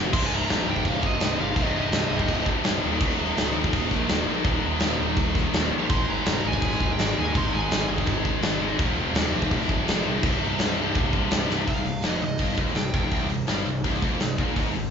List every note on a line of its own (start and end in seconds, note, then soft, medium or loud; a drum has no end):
0.00 0.13 F1 medium
0.00 0.12 F2 loud
0.13 0.27 C1 medium
0.13 0.69 C2 medium
0.13 0.67 G2 loud
0.13 0.66 C3 loud
0.13 0.25 C6 loud
0.13 kick loud
0.13 crash loud
0.13 crash medium
0.25 0.32 G#5 medium
0.32 0.45 C1 loud
0.32 0.67 A#5 loud
0.49 0.62 A#1 medium
0.49 snare loud
0.49 crash medium
0.67 0.80 C1 medium
0.67 1.56 C2 medium
0.67 1.57 G2 medium
0.67 1.56 C3 medium
0.67 0.88 G5 loud
0.76 kick medium
0.85 0.98 C1 medium
0.85 1.05 F5 medium
0.85 kick loud
0.85 crash medium
1.03 1.16 G1 medium
1.03 1.41 D#5 medium
1.03 kick medium
1.20 1.34 C1 medium
1.20 snare loud
1.20 crash medium
1.37 1.52 G1 medium
1.37 1.54 C2 medium
1.37 1.56 G2 medium
1.37 1.55 C3 loud
1.41 1.62 F5 medium
1.56 1.69 C1 loud
1.56 2.10 C2 medium
1.56 2.10 G2 loud
1.56 2.09 C3 loud
1.56 kick loud
1.56 crash medium
1.62 1.78 D#5 medium
1.74 1.88 C1 loud
1.79 2.46 D#5 medium
1.92 2.05 C1 medium
1.92 snare loud
1.92 crash medium
2.10 2.24 C1 loud
2.10 2.82 C2 medium
2.10 2.83 G2 medium
2.10 2.82 C3 medium
2.19 kick medium
2.28 2.55 C1 medium
2.28 kick medium
2.28 crash medium
2.46 kick medium
2.64 2.78 C1 medium
2.64 snare loud
2.64 crash medium
2.82 2.96 D#1 medium
2.82 3.37 D#2 loud
2.82 3.37 A#2 medium
2.82 3.40 D#3 loud
3.01 3.14 D#1 loud
3.01 kick loud
3.01 crash medium
3.19 3.32 D#1 loud
3.37 3.50 C#1 medium
3.37 4.25 D#2 medium
3.37 4.27 A#2 medium
3.37 4.28 D#3 medium
3.37 snare loud
3.37 crash medium
3.54 3.68 D#1 medium
3.64 kick medium
3.73 3.86 D#1 loud
3.73 kick loud
3.73 crash medium
3.91 4.04 A#1 loud
3.91 kick medium
3.91 snare soft
4.09 4.23 D#1 medium
4.09 4.25 D#2 medium
4.09 4.27 A#2 medium
4.09 4.28 D#3 medium
4.09 snare loud
4.09 crash medium
4.26 4.41 A#1 medium
4.26 4.80 D#2 medium
4.26 4.81 A#2 loud
4.26 4.82 D#3 loud
4.44 4.58 D#1 loud
4.44 kick loud
4.44 crash medium
4.64 4.77 D#1 loud
4.80 4.95 D#1 medium
4.80 5.71 D#2 medium
4.80 5.72 A#2 medium
4.80 5.72 D#3 medium
4.80 snare loud
4.80 crash medium
5.00 5.13 D#1 medium
5.16 5.43 D#1 medium
5.16 kick loud
5.16 crash medium
5.35 kick medium
5.35 snare soft
5.53 5.67 D#1 medium
5.53 5.71 D#2 medium
5.53 5.72 A#2 medium
5.53 5.72 D#3 medium
5.53 snare loud
5.53 crash medium
5.71 5.85 A#1 medium
5.89 6.03 G#1 loud
5.89 6.46 G#2 medium
5.89 6.44 D#3 medium
5.89 6.43 G#3 loud
5.89 6.10 C6 loud
5.89 kick loud
5.89 crash medium
6.08 6.21 G#1 medium
6.08 6.47 A#5 loud
6.26 6.39 F1 medium
6.26 snare loud
6.26 crash medium
6.44 6.58 G#1 medium
6.44 7.33 G#2 medium
6.44 7.34 D#3 medium
6.44 7.36 G#3 loud
6.44 6.92 G#5 loud
6.53 kick medium
6.62 6.75 G#1 medium
6.62 kick loud
6.62 crash medium
6.72 snare soft
6.80 6.93 D#1 loud
6.80 kick medium
6.93 7.19 G5 medium
6.99 7.12 G#1 medium
6.99 snare loud
6.99 crash medium
7.16 7.30 D#2 medium
7.16 7.33 G#2 medium
7.16 7.35 D#3 medium
7.16 7.37 G#3 medium
7.16 7.37 G#5 medium
7.34 7.48 G#1 loud
7.34 7.88 G#2 loud
7.34 7.89 D#3 medium
7.34 7.88 G#3 loud
7.34 7.55 C6 loud
7.34 kick loud
7.34 crash medium
7.53 7.66 G#1 loud
7.53 7.87 G#5 medium
7.71 7.85 G#1 medium
7.71 snare loud
7.71 crash medium
7.89 8.02 G#1 medium
7.89 8.79 G#2 medium
7.89 8.79 D#3 medium
7.89 8.78 G#3 medium
7.98 kick medium
8.06 8.33 G#1 loud
8.06 kick loud
8.06 crash medium
8.25 kick medium
8.43 8.56 G#1 medium
8.43 snare loud
8.43 crash medium
8.60 8.74 G#1 medium
8.60 8.78 G#2 medium
8.60 8.79 D#3 medium
8.60 8.78 G#3 medium
8.79 8.92 F1 loud
8.79 9.33 F2 loud
8.79 9.33 C3 loud
8.79 9.32 F3 loud
8.79 kick loud
8.79 crash medium
8.96 9.09 F1 loud
9.14 9.27 D#1 medium
9.14 snare loud
9.14 crash medium
9.32 9.45 F1 medium
9.32 10.24 F2 medium
9.32 10.23 C3 medium
9.32 10.23 F3 medium
9.42 kick medium
9.51 9.64 F1 loud
9.51 kick medium
9.51 crash medium
9.62 snare soft
9.68 9.82 C1 medium
9.68 kick medium
9.88 10.00 F1 medium
9.88 snare loud
9.88 crash medium
10.04 10.18 C2 medium
10.04 10.22 F2 medium
10.04 10.23 C3 medium
10.04 10.22 F3 medium
10.23 10.36 C1 loud
10.23 10.77 C2 loud
10.23 10.78 G2 loud
10.23 10.77 C3 loud
10.23 kick loud
10.23 crash medium
10.42 10.55 C1 loud
10.59 10.73 C1 medium
10.59 snare loud
10.59 crash medium
10.78 10.91 C1 medium
10.78 11.66 C2 medium
10.78 11.68 G2 medium
10.78 11.67 C3 medium
10.95 11.21 C1 medium
10.95 kick loud
10.95 crash medium
11.13 kick medium
11.31 11.45 C1 medium
11.31 snare loud
11.31 crash medium
11.50 11.63 C1 medium
11.50 11.67 C2 medium
11.50 11.68 G2 medium
11.50 11.67 C3 medium
11.50 snare medium
11.67 11.84 C1 medium
11.67 11.83 C2 loud
11.67 12.06 F5 medium
11.67 kick loud
11.67 open hi-hat medium
11.84 12.03 C1 medium
11.84 12.00 C2 medium
11.84 open hi-hat medium
12.02 12.21 F1 medium
12.02 12.21 F2 medium
12.02 12.23 D#5 medium
12.02 snare loud
12.02 open hi-hat medium
12.21 12.38 C1 medium
12.21 12.36 C2 medium
12.21 12.57 D#5 medium
12.21 open hi-hat medium
12.38 12.56 G1 medium
12.38 12.56 G2 medium
12.38 kick loud
12.38 open hi-hat medium
12.49 snare soft
12.56 12.75 D#1 medium
12.56 12.75 D#2 medium
12.56 kick loud
12.56 open hi-hat medium
12.68 snare soft
12.75 12.93 C1 medium
12.75 12.90 C2 medium
12.75 12.93 G5 medium
12.75 snare loud
12.75 open hi-hat medium
12.94 13.11 F1 medium
12.94 13.12 F2 loud
12.94 13.28 G5 medium
12.94 kick loud
12.94 open hi-hat medium
13.11 13.29 C1 medium
13.11 13.30 C2 loud
13.11 kick loud
13.11 open hi-hat medium
13.29 13.47 C1 medium
13.29 13.46 C2 medium
13.29 open hi-hat medium
13.47 13.65 G1 medium
13.47 13.66 G2 medium
13.47 snare loud
13.47 open hi-hat medium
13.66 13.84 C1 medium
13.66 13.82 C2 medium
13.66 open hi-hat medium
13.84 14.01 C1 medium
13.84 14.03 C2 loud
13.84 kick loud
13.84 open hi-hat medium
14.02 14.19 F1 medium
14.02 14.21 F2 medium
14.02 kick loud
14.02 open hi-hat medium
14.20 14.37 C1 medium
14.20 14.35 C2 medium
14.20 snare loud
14.20 open hi-hat medium
14.38 14.55 A#1 medium
14.38 14.56 A#2 loud
14.38 kick loud
14.38 open hi-hat medium
14.56 14.74 G#1 medium
14.56 14.73 G#2 loud
14.56 kick loud
14.56 open hi-hat medium
14.74 14.90 G#1 medium
14.74 14.89 G#2 medium
14.74 open hi-hat medium